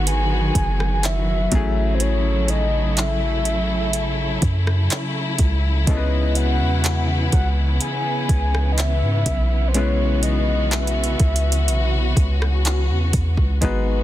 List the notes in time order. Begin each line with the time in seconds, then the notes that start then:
Already playing: G#1 D#3 F#3 G#3 B3 F#4 G#4
0.07 G#5, closed hi-hat
0.55 F#1, kick, closed hi-hat
0.80 cross-stick
1.03 E5, clap, closed hi-hat
1.52 A1 C#3 F#3 A3 C#4 E4 G#4, kick, closed hi-hat
1.95 C5
2.00 C#5, closed hi-hat
2.48 D#5, closed hi-hat
2.97 E5, clap, closed hi-hat
3.45 closed hi-hat
3.93 closed hi-hat
4.42 F#2, kick, closed hi-hat
4.67 cross-stick
4.90 clap, closed hi-hat
5.38 C#2, kick, closed hi-hat
5.87 C#2 E3 G#3 B3 C#4 E4 A4 D#5, kick, closed hi-hat
5.97 B4
6.35 F#5, closed hi-hat
6.61 E2
6.84 clap, closed hi-hat
7.32 C#2 F#5, kick, closed hi-hat
7.81 G#5, closed hi-hat
8.29 C#2, kick, closed hi-hat
8.55 cross-stick
8.72 D#5
8.78 E5, clap, closed hi-hat
9.02 G#2
9.26 B1, kick, closed hi-hat
9.68 C5
9.74 G#3 B3 C#4 E4 F#4 B4 C#5, closed hi-hat
10.23 D#5, closed hi-hat
10.71 E5, clap, closed hi-hat
10.87 closed hi-hat
11.04 closed hi-hat
11.20 C#2, kick, closed hi-hat
11.36 closed hi-hat
11.52 closed hi-hat
11.68 B1, closed hi-hat
12.17 C#2, kick, closed hi-hat
12.42 cross-stick
12.65 clap, closed hi-hat
12.89 E2
13.13 E2, kick, closed hi-hat
13.37 C#2, kick
13.61 G#1 D#3 F#3 G#3 B3 D#4 F#4 B4, kick, closed hi-hat